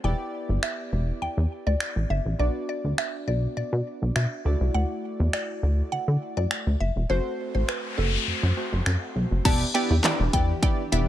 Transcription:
0.04 analog synth bass E1, synth keys B3 E4 G4 D5, synth pluck G5
0.49 analog synth bass G1
0.63 synth pluck E5, finger snap
0.92 analog synth bass E1
1.22 analog synth bass E2, synth pluck G5
1.37 analog synth bass E2
1.67 analog synth bass D2, synth pluck D5
1.80 finger snap
1.96 analog synth bass A1
2.10 analog synth bass G1, synth pluck E5
2.25 analog synth bass A1
2.39 analog synth bass B1, synth keys B3 D4 F#4 D5, synth pluck D5
2.69 synth pluck D5
2.84 analog synth bass D2
2.98 synth pluck E5, finger snap
3.28 analog synth bass B1, synth pluck D5
3.57 analog synth bass B2, synth pluck D5
3.73 analog synth bass B2
4.02 analog synth bass B1
4.16 analog synth bass B2, synth pluck E5, finger snap
4.45 analog synth bass D2, synth keys A3 E4 F#4 D5
4.61 analog synth bass C2
4.74 analog synth bass D2, synth pluck F#5
5.20 analog synth bass E2
5.33 synth pluck D5, finger snap
5.63 analog synth bass D2
5.92 analog synth bass D3, synth pluck F#5
6.08 analog synth bass D3
6.37 analog synth bass F#2, synth pluck D5
6.51 finger snap
6.67 analog synth bass D2
6.80 analog synth bass F#1, synth pluck E5
6.96 analog synth bass E1
7.09 analog synth bass F#1, synth keys A3 C4 F#4 C5, synth pluck C5, noise sweep
7.55 analog synth bass A1, synth pluck C5
7.68 synth pluck B4, finger snap
7.98 analog synth bass F#1, synth pluck A4
8.27 analog synth bass F#2
8.43 analog synth bass F#2
8.57 synth keys A3 C4 F#4 C5
8.72 analog synth bass F#1
8.86 analog synth bass F#2, finger snap
9.16 analog synth bass B1
9.31 analog synth bass F#1
9.45 analog synth bass E1, analog synth pad E3 D4 G4, synth keys B3 E4 G4 D5, synth pluck A5, kick, closed hi-hat, crash
9.74 synth keys B3 E4 G4 D5, synth pluck G5, closed hi-hat
9.90 analog synth bass E2
10.04 synth keys B3 E4 G4 D5, snare, clap, closed hi-hat
10.20 analog synth bass E1
10.33 analog synth bass E2, synth keys B3 E4 G4 D5, synth pluck G5, kick, closed hi-hat
10.63 synth keys B3 E4 G4 D5, synth pluck G5, kick, closed hi-hat
10.92 analog synth bass E1, synth keys B3 E4 G4 D5, synth pluck E5, closed hi-hat

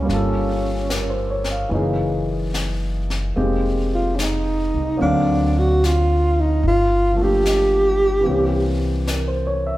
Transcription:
Already playing: grand piano C#3 A#3 C#4 G#4, tenor saxophone C#4
0.02 grand piano G3 A#3
0.08 upright bass G1, grand piano C#4 F4, brush sweep, snare
0.13 grand piano A4
0.90 grand piano A#4, snare, hi-hat pedal
1.10 grand piano C5
1.30 grand piano C#5
1.44 snare
1.51 grand piano F5
1.69 upright bass F#1, grand piano E3 A#3 C#4 D#4, brush sweep
1.75 grand piano G#4
2.54 snare, hi-hat pedal
3.10 snare
3.36 upright bass F1, grand piano G#3 A#3 C4 D#4 G4, brush sweep
3.94 tenor saxophone F4
4.16 tenor saxophone C#4, snare, hi-hat pedal
4.20 tenor saxophone D#4
4.74 upright bass C2
4.97 upright bass D2, grand piano F#3 A#3 C4
5.01 grand piano D3 F5, tenor saxophone D4, brush sweep
5.58 tenor saxophone F#4
5.84 tenor saxophone F4, snare, hi-hat pedal
6.41 tenor saxophone D#4
6.63 upright bass G1, brush sweep
6.68 tenor saxophone F4
7.13 grand piano F3 A3
7.18 grand piano A#3 D4
7.23 tenor saxophone G4, grand piano G4
7.46 snare, hi-hat pedal
8.21 grand piano E3 A#3
8.26 upright bass C2, grand piano C4 C#4, brush sweep
8.32 grand piano G4
9.07 grand piano A#4, snare, hi-hat pedal
9.28 grand piano C5
9.47 grand piano C#5
9.67 grand piano E5

